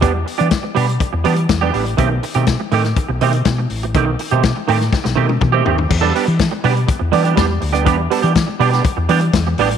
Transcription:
<<
  \new Staff \with { instrumentName = "Clean electric guitar" } { \time 4/4 \key e \minor \tempo 4 = 122 <g b d' g'>16 r8 <g b d' g'>16 r8 <g b d' g'>16 r8. <g b d' g'>16 r8 <g b d' g'>16 <g b d' g'>16 r16 | <dis a c' g'>16 r8 <dis a c' g'>16 r8 <dis a c' g'>16 r8. <dis a c' g'>16 r4 r16 | <dis a c' g'>16 r8 <dis a c' g'>16 r8 <dis a c' g'>16 r8. <dis a c' g'>16 r8 <dis a c' g'>16 <dis a c' g'>16 r16 | r16 <g b d' a'>16 <g b d' g'>16 r8. <g b d' g'>16 r8. <g b d' g'>16 <g b d' g'>16 <g b d' g'>16 r8 <g b d' g'>16 |
<g b d' g'>16 r16 <g b d' a'>16 <g b d' g'>16 r8 <g b d' g'>16 <g b d' g'>16 r8 <g b d' g'>16 r8. <g b d' g'>16 r16 | }
  \new Staff \with { instrumentName = "Fingered electric bass" } { \clef bass \time 4/4 \key e \minor e,8 r16 e16 r8 b,8 r16 e,16 e8 e,8 a,,8 | b,,8 r16 b,8 r16 a,8 r16 b,,16 b,8 b,8 a,,8 | b,,8 r16 b,8 r16 a,8 r16 b,,16 b,8 b,8 dis,8 | e,8 r16 e8 r16 b,8 r16 e,16 e8 e,8 d,8 |
e,8 r16 e8 r16 b,8 r16 e,16 e8 e,8 a,,8 | }
  \new DrumStaff \with { instrumentName = "Drums" } \drummode { \time 4/4 <hh bd>8 hho16 hh16 <hh bd sn>8 hho16 hh16 <hh bd>8 hho16 hh16 <hh bd sn>8 hho16 hh16 | <hh bd>8 hho16 hh16 <hh bd sn>8 hho16 <hh sn>16 <hh bd>8 hho16 hh16 <hh bd sn>8 hho16 hh16 | <hh bd>8 hho16 hh16 <hh bd sn>8 hho16 <hh sn>16 <bd sn>16 sn8 tommh16 <bd toml>8 tomfh16 tomfh16 | <cymc bd>8 hho16 hh16 <hh bd sn>8 hho16 hh16 <hh bd>8 hho16 hh16 <hh bd sn>8 hho16 hh16 |
<hh bd>8 hho16 hh16 <hh bd sn>8 hho16 <hh sn>16 <hh bd>8 hho16 hh16 <hh bd sn>8 hho16 hh16 | }
>>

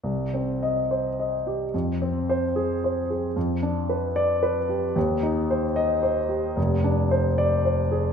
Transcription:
\new Staff \with { instrumentName = "Grand piano" } { \time 6/8 \key c \minor \tempo 4. = 74 << { r4 ees''4 r4 | r4 c''4 r4 | r4. d''4 r8 | r4. ees''4 r8 |
r4. d''4 r8 | } \\ { c,8 c'4 c''8 ees''8 g'8 | f,8 c'4 aes'8 c''8 aes'8 | f,8 d'8 b'4 b'8 g'8 | ees,8 ees'8 c''4 c''8 g'8 |
f,,8 d'8 c''4 c''8 aes'8 | } >> }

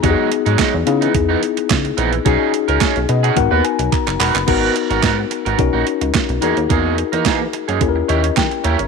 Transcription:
<<
  \new Staff \with { instrumentName = "Tine electric piano" } { \time 4/4 \key gis \minor \tempo 4 = 108 << { r1 | r4. dis''16 fis''16 fis''8 gis''8 ais''8 b''8 | r1 | r2 r8 dis''8 g''8 ais''8 | } \\ { <b dis' fis' g' gis'>4. <b dis' e' gis'>2~ <b dis' e' gis'>8 | <cis' dis' fis' gis'>2 <b dis' fis' ais'>2 | <b dis' fis' ais'>2 <cis' dis' fis' ais'>4. <dis' fis' gis' ais'>8~ | <dis' fis' gis' ais'>2 <cis' e' g' a' ais'>2 | } >> }
  \new Staff \with { instrumentName = "Clean electric guitar" } { \time 4/4 \key gis \minor <fis gis dis'>8 r16 <fis gis dis'>16 <fis gis dis'>16 r8 <e b dis'>16 r16 <e b dis'>16 r4 <e b dis'>16 r16 | <cis' dis' gis'>8 r16 <cis' dis' ais'>16 <cis' dis' gis'>16 r8 <cis' dis' gis'>16 r16 <b fis' b'>16 r4 <b fis' ais'>16 r16 | <b fis' ais'>8 r16 <b fis' ais'>16 <b fis' ais'>16 r8 <b fis' ais'>16 r16 <ais dis' fis'>16 r4 <ais dis' gis'>16 r16 | <ais dis' gis'>8 r16 <ais dis' ais'>16 <ais dis' gis'>16 r8 <ais dis' gis'>16 r8 <cis' e' g'>16 r8. <cis' e' g'>16 r16 | }
  \new Staff \with { instrumentName = "Analog synth bass" } { \clef bass \time 4/4 \key gis \minor e,16 r8 gis,16 r16 e,16 cis8 e,8 r8 cis,8 ais,,8 | b,,16 r8 cis,16 r16 b,,16 b,8 gis,,16 dis,16 r16 b,,16 r16 fis,,16 e,,16 fis,,16 | gis,,8 r16 gis,,16 gis,8 r16 gis,,16 b,,16 ais,,16 r16 cis,16 r16 b,,16 e,16 dis,16 | e,8. e,16 e8 r16 fis,16 dis,8 dis,8 dis16 r16 dis,16 g,,16 | }
  \new DrumStaff \with { instrumentName = "Drums" } \drummode { \time 4/4 <hh bd>8 hh16 hh16 <hc hh bd sn>8 hh16 hh16 <hh bd>8 hh16 hh16 <hc hh bd sn>16 hh16 hh16 hh16 | <hh bd>8 hh16 hh16 <hc hh bd sn>16 hh16 hh16 hh16 <hh bd>8 hh16 hh16 <hc hh bd>16 <hc hh>16 <hc hho>16 <hc hh>16 | <cymc hh bd>8 hh16 hh16 <hc hh bd sn>8 hh16 hh16 <hh bd>8 hh16 hh16 <hc hh bd sn>16 hh16 hh16 hh16 | <hh bd>8 hh16 hh16 <hc hh bd sn>8 hh16 hh16 <hh bd>8 hh16 hh16 <hc hh bd sn>16 hh16 hh16 hh16 | }
>>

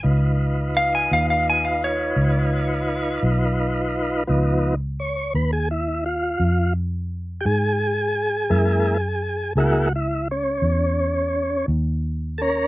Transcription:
<<
  \new Staff \with { instrumentName = "Electric slide guitar" } { \time 12/8 \key des \mixolydian \tempo 4. = 57 r4 f''16 aes''16 f''16 f''16 aes''16 f''16 des''2 r4. | r1. | r1. | }
  \new Staff \with { instrumentName = "Tonewheel organ" } { \time 12/8 \key des \mixolydian <ees' f' ces''>1. | r4 des''8 ces''16 aes'16 fes'8 f'4 r4 <g' aes'>4.~ | <g' aes'>4. ges'8 fes'8 des'2 r4 <des' a' bes'>8 | }
  \new Staff \with { instrumentName = "Tonewheel organ" } { \time 12/8 \key des \mixolydian r1. | <f ces' ees'>8 r1 r4. | <aes bes fes'>8 r4 <aes bes fes'>8 r1 | }
  \new Staff \with { instrumentName = "Fingered electric bass" } { \clef bass \time 12/8 \key des \mixolydian des,4. ees,4. des,4. ces,4. | des,4. ees,4. f,4. aes,4. | ges,4. des,4. fes,4. ees,4. | }
>>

